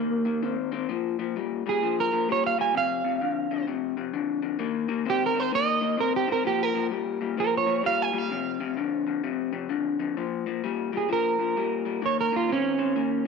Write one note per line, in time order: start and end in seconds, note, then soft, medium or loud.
0.00 0.22 D#3 medium
0.00 0.23 A#3 medium
0.00 0.55 A#3 medium
0.25 0.40 D#3 medium
0.25 0.41 A#3 medium
0.42 0.69 D#3 medium
0.42 0.69 C4 medium
0.72 0.87 D#3 medium
0.72 0.87 C4 medium
0.89 1.15 A#2 medium
0.89 1.16 F3 medium
1.19 1.34 A#2 medium
1.19 1.34 F3 medium
1.36 1.62 A#2 medium
1.36 1.62 G3 medium
1.66 1.80 A#2 medium
1.66 1.81 G3 medium
1.66 1.98 G#4 medium
1.82 2.09 A#2 medium
1.82 2.09 F3 medium
2.00 2.29 A#4 medium
2.12 2.27 A#2 medium
2.12 2.27 F3 medium
2.29 2.55 A#2 medium
2.29 2.55 G3 medium
2.29 2.45 C#5 loud
2.46 2.60 F5 medium
2.58 2.73 A#2 medium
2.58 2.73 G3 medium
2.58 2.75 G#5 medium
2.75 3.01 F2 medium
2.75 3.01 C3 medium
2.75 3.66 F5 loud
3.04 3.19 F2 medium
3.04 3.19 C3 medium
3.21 3.48 F2 medium
3.21 3.48 D3 medium
3.51 3.66 F2 medium
3.51 3.66 D3 medium
3.67 3.94 F2 medium
3.67 3.94 C3 medium
3.97 4.12 F2 medium
3.97 4.12 C3 medium
4.14 4.40 F2 medium
4.14 4.40 D3 medium
4.42 4.58 F2 medium
4.42 4.58 D3 medium
4.59 4.86 D#3 medium
4.59 4.86 A#3 loud
4.88 5.04 D#3 medium
4.88 5.04 A#3 medium
5.05 5.32 D#3 medium
5.05 5.33 C4 medium
5.10 5.23 G4 loud
5.26 5.40 A#4 medium
5.35 5.50 D#3 medium
5.35 5.50 C4 medium
5.40 5.53 C5 medium
5.52 5.79 D#3 medium
5.52 5.79 A#3 medium
5.52 5.99 D#5 loud
5.81 5.96 D#3 medium
5.81 5.97 A#3 medium
5.98 6.25 D#3 medium
5.98 6.25 C4 medium
5.98 6.15 A#4 medium
6.16 6.30 G4 medium
6.27 6.43 D#3 medium
6.27 6.43 C4 medium
6.32 6.46 A#4 loud
6.44 6.71 A#2 medium
6.44 6.72 F3 medium
6.44 6.63 G4 medium
6.63 6.86 A#4 loud
6.75 6.90 A#2 medium
6.75 6.90 F3 medium
6.91 7.18 A#2 medium
6.91 7.18 G3 medium
7.21 7.36 A#2 medium
7.21 7.37 G3 medium
7.37 7.64 A#2 medium
7.37 7.65 F3 medium
7.37 7.54 A#4 loud
7.57 7.85 C#5 medium
7.67 7.82 A#2 medium
7.67 7.82 F3 medium
7.83 8.10 A#2 medium
7.83 8.11 G3 medium
7.83 8.02 F5 loud
8.02 8.18 G#5 medium
8.13 8.29 A#2 medium
8.13 8.29 G3 medium
8.18 9.07 F5 loud
8.30 8.57 F2 medium
8.30 8.58 C3 medium
8.60 8.75 F2 medium
8.60 8.76 C3 medium
8.77 9.04 F2 medium
8.77 9.04 D3 medium
9.07 9.22 F2 medium
9.07 9.22 D3 medium
9.24 9.50 F2 medium
9.24 9.50 C3 medium
9.52 9.68 F2 medium
9.52 9.68 C3 medium
9.69 9.96 F2 medium
9.69 9.97 D3 medium
9.99 10.15 F2 medium
9.99 10.15 D3 medium
10.17 10.43 A#2 medium
10.17 10.44 F3 medium
10.46 10.61 A#2 medium
10.46 10.62 F3 medium
10.64 10.90 A#2 medium
10.64 10.90 G3 medium
10.92 11.08 A#2 medium
10.92 11.08 G3 medium
10.97 11.11 G#4 medium
11.09 11.36 A#2 medium
11.09 11.36 F3 medium
11.09 12.01 A#4 medium
11.39 11.54 A#2 medium
11.39 11.55 F3 medium
11.57 11.83 A#2 medium
11.57 11.83 G3 medium
11.85 12.01 A#2 medium
11.85 12.01 G3 medium
12.02 12.29 D#3 medium
12.02 12.29 A#3 medium
12.02 12.19 C#5 medium
12.21 12.35 A#4 medium
12.32 12.47 D#3 medium
12.32 12.48 A#3 medium
12.36 12.50 F4 medium
12.49 12.76 D#3 medium
12.49 12.76 C4 medium
12.49 13.27 C#4 medium
12.78 12.94 D#3 medium
12.78 12.94 C4 medium
12.96 13.22 D#3 medium
12.96 13.23 A#3 medium